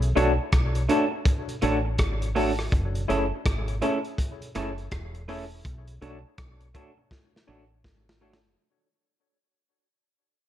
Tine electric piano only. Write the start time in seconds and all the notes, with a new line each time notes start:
0.16 D4 F#4 A4 C#5
0.89 D4 F#4 A4 C#5
1.62 D4 F#4 A4 C#5
2.35 D4 F#4 A4 C#5
3.08 E4 G#4 A4 C#5
3.82 E4 G#4 A4 C#5
4.56 E4 G#4 A4 C#5
5.28 E4 G#4 A4 C#5
6.02 D4 F#4 A4 C#5
6.75 D4 F#4 A4 C#5
7.47 D4 F#4 A4 C#5
8.21 D4 F#4 A4 C#5